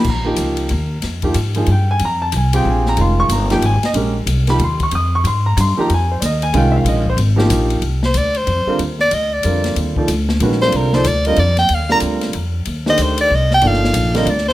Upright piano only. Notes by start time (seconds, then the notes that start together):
0.10 A#5
0.25 F3 A#3 D#4 G4
1.23 F3 A#3 D#4 G4
1.56 F3 A#3 D#4 G#4
1.72 G5
1.91 G#5
2.05 A#5
2.22 A5
2.37 G#5
2.54 C4 F4 G4 G#4 G5
2.68 G#5
2.89 A#5
2.98 D#3 G#3 C#4 F4 C6
3.20 C#6
3.32 A#5
3.51 F3 A#3 D#4 G4 G5
3.66 G#5
3.85 D#5
3.95 G#3 C#4 G4 A#4
4.47 F3 A#3 D#4 G4 B5
4.64 C6
4.83 C#6
4.95 D#6
5.15 C#6
5.27 C6
5.46 A#5
5.61 C6
5.77 F3 A#3 D#4 G4 A#5
5.94 G#5
6.11 C5
6.20 D5
6.25 D#5
6.43 G#5
6.54 D#3 G#3 C#4 F4 G5
6.72 E5
6.76 F5
6.88 D#5
7.10 C5
7.36 F3 A#3 D#4 G4
8.67 D3 G3 C4 F4 A#4
9.44 D3 G3 C4 F4 A#4
9.97 F3 A#3 D#4 A4 D5
10.42 D#3 G#3 C#4 F#4 B4
10.62 D3 G3 C4 F4 A#4
10.93 F3 A#3 D#4 A4 D5
11.26 D3 G3 C4 F4 A#4
11.89 D3 G3 C4 F4 A#4
12.86 D#3 A3 D4 G4 C5
13.62 F3 A#3 D#4 A4 D5
14.14 D3 G3 C4 F4 A#4